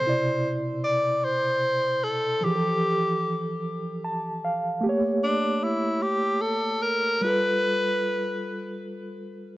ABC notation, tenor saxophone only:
X:1
M:6/8
L:1/8
Q:3/8=50
K:C
V:1 name="Tenor saxophone"
c z d c2 A | G3 z3 | z D E G A _B | B4 z2 |]